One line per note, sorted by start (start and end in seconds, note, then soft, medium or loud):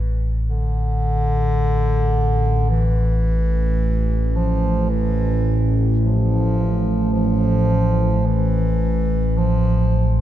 0.00 10.21 A1 medium
0.00 0.20 E3 loud
0.47 2.72 D3 loud
2.70 4.38 E3 medium
4.36 4.91 F3 loud
4.90 5.75 E3 loud
6.05 7.11 F3 loud
7.13 8.28 F3 loud
8.26 9.39 E3 medium
9.38 10.21 F3 loud